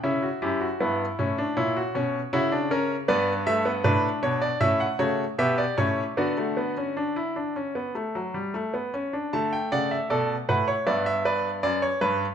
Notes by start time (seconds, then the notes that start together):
0.04 C#3 C#4 E4 E5
0.23 F#4
0.42 F#2 E4 G4
0.61 F#4
0.80 G2 B3 E4
1.19 A2 C#4
1.38 D4
1.57 A#2 E4 C#5
1.77 F#4
1.95 B2 C#4
2.33 C#3 E4 F#4 C#5
2.52 D4
2.71 C#4 A#4
3.08 G2 B3 B4 D5
3.47 A3 E5
3.65 B3
3.84 A2 D4 B4
4.23 B2 C#5
4.42 D5
4.61 A2 C#4 E4 E5
4.80 F#5
4.99 C#3 A3 F#4 C#5
5.38 B2 B3 G4 E5
5.58 D5
5.78 A2 C#4 C#5
6.17 D3 B3 F#4 D5
6.38 A3
6.57 B3
6.77 C#4
6.97 D4
7.16 E4
7.36 D4
7.56 C#4
7.75 B3
7.95 A3
8.15 F#3
8.34 G3
8.54 A3
8.74 B3
8.94 C#4
9.13 D4
9.33 D3 A3 A5
9.53 G5
9.72 C#3 D5 F#5
9.91 E5
10.10 B2 A4 D5
10.49 A2 B4 F#5
10.68 C#5
10.87 G2 B3 D5 E5
11.06 E5
11.25 B4 D5
11.63 F#2 D5
11.82 C#5
12.01 G2 B4